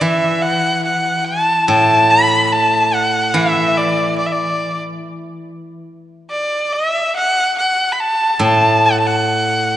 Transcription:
0.01 guzheng E3, erhu E5
0.42 erhu F#5
0.85 erhu F#5
1.25 erhu A5
1.68 guzheng A2, erhu A5
2.10 erhu B5
2.47 erhu B5
2.52 erhu A5
2.94 erhu F#5
3.34 guzheng E3, erhu E5
3.78 erhu D5
4.18 erhu D5
4.26 erhu E5
4.32 erhu D5
6.31 erhu D5
6.73 erhu E5
7.16 erhu F#5
7.58 erhu F#5
7.92 erhu B5
8.00 erhu A5
8.39 guzheng A2, erhu A5
8.86 erhu F#5
9.00 erhu A5
9.07 erhu F#5

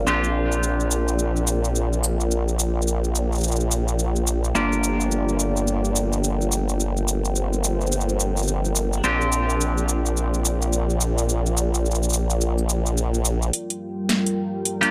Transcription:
Already playing: analog synth pad F4 A#4 D5
0.06 wobble bass A#1, clean electric guitar C4 D4 F4 G4, analog synth pad G5, shaker
0.24 shaker
0.52 shaker
0.63 shaker
0.80 shaker
0.91 shaker
1.08 shaker
1.19 shaker
1.36 shaker
1.47 shaker
1.65 shaker
1.76 shaker
1.93 shaker
2.04 shaker
2.21 shaker
2.31 shaker
2.48 shaker
2.59 shaker
2.82 shaker
2.88 shaker
3.04 shaker
3.16 shaker
3.33 shaker
3.35 shaker
3.38 shaker
3.41 shaker
3.44 shaker
3.48 shaker
3.52 shaker
3.56 shaker
3.60 shaker
3.71 shaker
3.88 shaker
3.99 shaker
4.16 shaker
4.27 shaker
4.44 shaker
4.55 wobble bass G1, clean electric guitar A#3 D4 F4 G4, analog synth pad A#4 D5, shaker
4.73 shaker
4.84 shaker
5.01 shaker
5.12 shaker
5.29 shaker
5.40 shaker
5.57 shaker
5.68 shaker
5.85 shaker
5.96 shaker
6.13 shaker
6.24 shaker
6.41 shaker
6.52 shaker
6.69 shaker
6.79 analog synth pad C5, shaker
6.97 shaker
7.08 shaker
7.25 shaker
7.36 shaker
7.53 shaker
7.64 shaker
7.81 shaker
7.87 shaker
7.92 shaker
8.01 shaker
8.09 shaker
8.20 shaker
8.37 shaker
8.39 shaker
8.43 shaker
8.44 shaker
8.46 shaker
8.48 shaker
8.65 shaker
8.76 shaker
8.93 shaker
9.04 wobble bass A#1, clean electric guitar C4 D4 F4 G4, analog synth pad F4 D5, shaker
9.21 shaker
9.32 shaker
9.50 shaker
9.61 shaker
9.78 shaker
9.89 shaker
10.06 shaker
10.17 shaker
10.34 shaker
10.45 shaker
10.62 shaker
10.73 shaker
10.90 shaker
11.01 shaker
11.18 shaker
11.29 shaker
11.46 shaker
11.57 shaker
11.75 shaker
11.86 shaker
11.91 shaker
11.95 shaker
12.03 shaker
12.10 shaker
12.13 shaker
12.30 shaker
12.41 shaker
12.58 shaker
12.69 shaker
12.86 shaker
12.98 shaker
13.14 shaker
13.25 shaker
13.42 shaker
13.53 analog synth pad G3 F4 A#4 G5, closed hi-hat
13.70 closed hi-hat
14.09 snare, closed hi-hat
14.26 closed hi-hat
14.65 closed hi-hat
14.81 clean electric guitar A#3 D4 F4 G4, closed hi-hat

